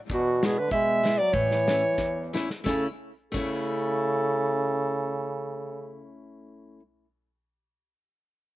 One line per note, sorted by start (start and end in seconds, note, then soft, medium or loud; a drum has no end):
0.10 0.57 E2 medium
0.10 0.45 B2 loud
0.10 kick medium
0.14 0.47 F#4 loud
0.43 0.61 B2 medium
0.43 0.55 G#3 medium
0.43 0.56 B3 medium
0.43 0.57 E4 medium
0.43 0.60 G#4 medium
0.43 snare medium
0.43 hi-hat pedal soft
0.59 0.72 D3 medium
0.59 0.71 B4 medium
0.71 1.19 B2 medium
0.71 1.22 G#3 loud
0.71 1.20 E5 loud
0.71 kick medium
1.03 1.17 G#3 medium
1.03 1.17 B3 medium
1.03 1.18 E4 medium
1.03 snare medium
1.03 hi-hat pedal soft
1.18 1.36 F#3 medium
1.18 1.34 D5 loud
1.33 1.82 A2 medium
1.33 2.35 E3 loud
1.33 2.34 C#5 loud
1.33 kick medium
1.51 snare medium
1.68 1.82 A3 medium
1.68 1.82 C#4 medium
1.68 1.82 E4 medium
1.68 snare medium
1.68 hi-hat pedal medium
1.98 2.49 E2 medium
1.98 kick medium
1.98 snare soft
2.33 2.48 A3 medium
2.33 2.48 C#4 medium
2.33 2.48 E4 medium
2.33 snare medium
2.33 hi-hat pedal soft
2.50 snare medium
2.63 2.87 C#3 medium
2.63 2.85 A3 medium
2.63 2.87 C#4 medium
2.63 2.85 A4 medium
2.63 kick medium
2.63 snare medium
2.69 2.88 E4 medium
3.31 6.79 A3 medium
3.31 6.80 C#4 medium
3.31 6.09 A4 medium
3.31 kick medium
3.31 crash medium
3.36 6.11 C#3 loud
3.36 6.82 E4 medium